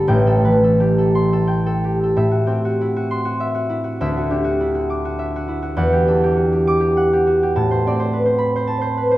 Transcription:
<<
  \new Staff \with { instrumentName = "Harp" } { \time 3/4 \key a \dorian \tempo 4 = 101 << { r4. c'''4.~ | c'''4. c'''4. | r4. d'''4.~ | d'''4. d'''4. |
r4. b''4. | } \\ { <a' g''>16 a'16 b'16 a'16 g'16 a'8 a'16 g''16 a'16 g'16 a'16 | e''16 fis'16 g'16 fis'16 e'16 fis'8 fis'16 e''16 fis'16 e'16 fis'16 | e''16 fis'16 g'16 fis'16 e'16 fis'8 fis'16 e''16 fis'16 e'16 fis'16 | fis''16 g'16 a'16 g'16 fis'16 g'8 g'16 fis''16 g'16 fis'16 g'16 |
a''16 c''16 d''16 c''16 b'16 c''8 c''16 a''16 c''16 b'16 c''16 | } >> }
  \new Staff \with { instrumentName = "Harp" } { \clef bass \time 3/4 \key a \dorian <a,, a, a>8 e8 a2 | a,8 c'2~ c'8 | d,8 d'2~ d'8 | e,8 d'2~ d'8 |
a,8 c'2~ c'8 | }
>>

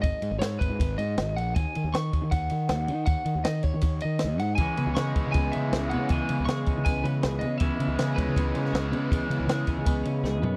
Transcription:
<<
  \new Staff \with { instrumentName = "Lead electric guitar" } { \time 4/4 \key cis \dorian \tempo 4 = 159 dis''4 cis''8 b'4 dis''4 fis''8 | gis''4 cis'''4 fis''2 | fis''4 dis''8 cis''4 dis''4 fis''8 | gis''4 cis'''4 gis''8 e''4 fis''8 |
gis''4 cis'''4 gis''8 b'4 dis''8 | e''4. b'2~ b'8~ | b'2. r4 | }
  \new Staff \with { instrumentName = "Clean electric guitar" } { \time 4/4 \key cis \dorian r1 | r1 | r1 | e8 b8 gis'8 cis'8 b8 cis'8 gis'8 b8 |
e8 b8 gis'8 cis'8 b8 cis'8 gis'8 b8 | e8 b8 gis'8 cis'8 b8 cis'8 gis'8 b8 | e8 b8 gis'8 cis'8 b8 cis'8 gis'8 b8 | }
  \new Staff \with { instrumentName = "Overdriven electric guitar" } { \clef bass \time 4/4 \key cis \dorian r1 | r1 | r1 | <cis e gis cis'>1~ |
<cis e gis cis'>1 | <cis e gis cis'>1~ | <cis e gis cis'>1 | }
  \new Staff \with { instrumentName = "Fingered electric bass" } { \clef bass \time 4/4 \key cis \dorian gis,,16 r16 gis,16 gis,,16 gis,8 gis,,16 gis,16 gis,,8 gis,8 gis,,8 ais,,8 | dis,16 r16 dis16 dis,16 dis8 dis,16 dis16 dis,8 dis8 dis,8 dis8 | dis,16 r16 dis16 dis,16 dis8 dis,16 dis16 dis,8 dis8 dis,8 gis,8 | cis,16 r16 cis16 cis,16 cis8 cis,16 cis16 cis,8 cis8 cis,8 cis8 |
cis,16 r16 cis16 cis,16 cis8 cis,16 cis16 cis,8 cis8 cis,8 cis8 | cis,16 r16 cis16 cis,16 cis8 cis,16 cis16 cis,8 cis8 cis,8 cis8 | cis,16 r16 cis16 cis,16 cis8 cis,16 cis16 cis,8 cis8 cis,8 fis,8 | }
  \new DrumStaff \with { instrumentName = "Drums" } \drummode { \time 4/4 <bd cymr>8 cymr8 <cymr sn>8 <bd cymr>8 <bd cymr>8 cymr8 <cymr sn>8 cymr8 | <bd cymr>8 cymr8 <cymr sn>8 <bd cymr>8 <bd cymr>8 cymr8 <cymr sn>8 cymr8 | <bd cymr>8 cymr8 <cymr sn>8 <bd cymr>8 <bd cymr>8 cymr8 <cymr sn>8 cymr8 | <bd cymr>8 cymr8 <cymr sn>8 <bd cymr>8 <bd cymr>8 cymr8 <cymr sn>8 cymr8 |
<bd cymr>8 cymr8 <cymr sn>8 <bd cymr>8 <bd cymr>8 cymr8 <cymr sn>8 cymr8 | <bd cymr>8 cymr8 <cymr sn>8 <bd cymr>8 <bd cymr>8 cymr16 sn16 <cymr sn>8 cymr8 | <bd cymr>8 cymr8 <cymr sn>8 <bd cymr>8 <bd cymr>8 cymr8 sn8 tomfh8 | }
>>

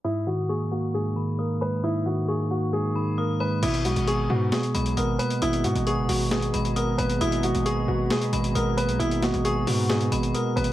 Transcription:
<<
  \new Staff \with { instrumentName = "Synth bell" } { \time 4/4 \key gis \minor \tempo 4 = 134 dis'''4 cis'''4. b''8 dis'''8 b''8 | dis'''4 cis'''4. b''8 dis'''8 b''8 | dis'''4 cis'''4. b''8 dis'''8 b''8 | dis'''4 cis'''4. b''8 dis'''8 b''8 |
dis'''4 cis'''4. b''8 dis'''8 b''8 | dis'''4 cis'''4. b''8 dis'''8 b''8 | }
  \new Staff \with { instrumentName = "Ambient pad" } { \time 4/4 \key gis \minor r1 | r1 | <gis' dis'' ais'' b''>1~ | <gis' dis'' ais'' b''>1~ |
<gis' dis'' ais'' b''>1~ | <gis' dis'' ais'' b''>1 | }
  \new Staff \with { instrumentName = "Grand piano" } { \time 4/4 \key gis \minor e'8 fis'8 gis'8 fis'8 gis'4 ais'8 b'8 | e'8 fis'8 gis'8 fis'8 gis'4 ais'8 b'8 | e'8 fis'8 gis'8 fis'8 gis'4 ais'8 b'8 | e'8 fis'8 gis'8 fis'8 gis'4 ais'8 b'8 |
e'8 fis'8 gis'8 fis'8 gis'4 ais'8 b'8 | e'8 fis'8 gis'8 fis'8 gis'4 ais'8 b'8 | }
  \new Staff \with { instrumentName = "Tine electric piano" } { \clef bass \time 4/4 \key gis \minor gis,8 dis8 ais8 ais8 gis,8 dis8 ais8 gis8 | gis,8 dis8 ais8 ais8 gis,8 dis8 ais8 gis8 | b,8 gis8 b8 b8 b,8 gis8 b8 ais8 | b,8 gis8 b8 b8 b,8 gis8 b8 ais8 |
b,8 gis8 b8 b8 b,8 gis8 b8 ais8 | b,8 gis8 b8 b8 b,8 gis8 b8 ais8 | }
  \new Staff \with { instrumentName = "808-style bass" } { \clef bass \time 4/4 \key gis \minor r1 | r1 | gis,,8 b,,16 gis,,8. gis,8 r8 b,,8 gis,,8 r8 | gis,,8 gis,16 gis,,8 fis,,16 gis,,4 gis,,4 gis,,8 |
gis,,8. gis,,8. gis,,8 r8 gis,,8 gis,,8. b,,16 | gis,,8. gis,,8. gis,4 gis,,8 r8 gis,,8 | }
  \new DrumStaff \with { instrumentName = "Drums" } \drummode { \time 4/4 r4 r4 r4 r4 | r4 r4 r4 r4 | <cymc hh>16 hh16 hh16 hh16 hh4 <hh sn>16 hh16 hh16 hh16 hh8 hh16 hh16 | hh16 hh16 hh16 hh16 hh8 hho8 <hh sn>16 hh16 hh16 hh16 hh8 hh16 hh16 |
hh16 hh16 hh16 hh16 hh4 <hh sn>16 hh16 hh16 hh16 hh8 hh16 hh16 | hh16 hh16 <hh sn>16 hh16 hh8 hho8 <hh sn>16 hh16 hh16 hh16 \tuplet 3/2 { hh16 r16 r16 hh16 hh16 r16 } | }
>>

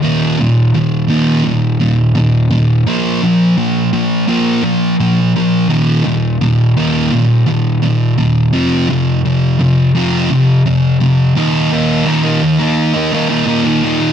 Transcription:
\new Staff \with { instrumentName = "Distorted electric guitar" } { \clef bass \time 4/4 \key bes \major \tempo 4 = 85 <ees, bes, ees>8 <ees, bes,>8 <ees, bes,>8 <ees, bes, ees>8 <ees, bes,>8 <ees, bes,>8 <ees, bes,>8 <ees, bes,>8 | <bes, f bes>8 <bes, f>8 <bes, f>8 <bes, f>8 <bes, f bes>8 <bes, f>8 <bes, f>8 <bes, f>8 | <ees, bes, ees>8 <ees, bes,>8 <ees, bes,>8 <ees, bes, ees>8 <ees, bes,>8 <ees, bes,>8 <ees, bes,>8 <ees, bes,>8 | <f, c f>8 <f, c>8 <f, c>8 <f, c>8 <f, c f>8 <f, c>8 <f, c>8 <f, c>8 |
<ees, bes, ees bes ees'>8 <bes, ees bes ees'>8 <ees, bes, ees bes ees'>16 <ees bes ees'>8 <ees bes ees'>8 <ees bes ees'>16 <bes, ees bes ees'>16 <ees bes ees'>16 <ees, bes, ees bes ees'>16 <ees bes ees'>16 <bes, ees bes ees'>8 | }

